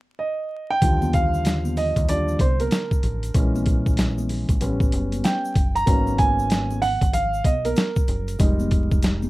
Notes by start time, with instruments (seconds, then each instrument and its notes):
0.19 grand piano D#5
0.71 grand piano G5
0.82 fingered electric bass D#2, grand piano D3 F3 G3, kick, closed hi-hat, shaker
1.02 high conga, shaker
1.13 grand piano F5, kick, closed hi-hat, shaker
1.34 shaker
1.45 snare, closed hi-hat, shaker
1.65 high conga, shaker
1.77 grand piano D#5, open hi-hat, low conga, shaker
1.96 fingered electric bass D#2, kick, closed hi-hat, shaker
2.08 grand piano F3 G3 D4 D5, closed hi-hat, low conga, shaker
2.28 shaker
2.39 fingered electric bass C2, grand piano C5, kick, closed hi-hat, high conga, shaker
2.60 grand piano A#4, closed hi-hat, high conga, shaker
2.71 snare, closed hi-hat, shaker
2.91 kick, shaker
3.03 fingered electric bass A1, closed hi-hat, low conga, shaker
3.23 closed hi-hat, shaker
3.34 fingered electric bass A#1, grand piano E3 G#3 C#4, kick, closed hi-hat, shaker
3.55 high conga, shaker
3.66 kick, closed hi-hat, shaker
3.86 kick, shaker
3.97 snare, closed hi-hat, shaker
4.18 high conga, shaker
4.29 open hi-hat, low conga, shaker
4.49 fingered electric bass A#1, kick, closed hi-hat, shaker
4.60 fingered electric bass A1, grand piano G3 B3 C#4, closed hi-hat, low conga, shaker
4.80 kick, shaker
4.92 fingered electric bass F#1, closed hi-hat, high conga, shaker
5.12 closed hi-hat, high conga, shaker
5.24 grand piano G5, snare, closed hi-hat, shaker
5.45 shaker
5.55 fingered electric bass F#1, kick, closed hi-hat, low conga, shaker
5.75 grand piano A#5, closed hi-hat, shaker
5.86 fingered electric bass G#1, grand piano F#3 A#3 B3 C#4, kick, closed hi-hat, shaker
6.07 high conga, shaker
6.18 grand piano G#5, kick, closed hi-hat, shaker
6.39 shaker
6.50 snare, closed hi-hat, shaker
6.71 high conga, shaker
6.82 grand piano F#5, open hi-hat, low conga, shaker
7.01 fingered electric bass G#1, kick, closed hi-hat, shaker
7.13 grand piano F5, closed hi-hat, low conga, shaker
7.34 shaker
7.44 fingered electric bass B1, grand piano D#5, kick, closed hi-hat, high conga, shaker
7.65 grand piano A#4, closed hi-hat, high conga, shaker
7.76 snare, closed hi-hat, shaker
7.96 kick, shaker
8.08 fingered electric bass F#1, closed hi-hat, low conga, shaker
8.28 closed hi-hat, shaker
8.39 fingered electric bass F1, grand piano G3 G#3 D#4, kick, closed hi-hat, shaker
8.60 high conga, shaker
8.71 kick, closed hi-hat, shaker
8.91 kick, shaker
9.02 snare, closed hi-hat, shaker
9.22 high conga, shaker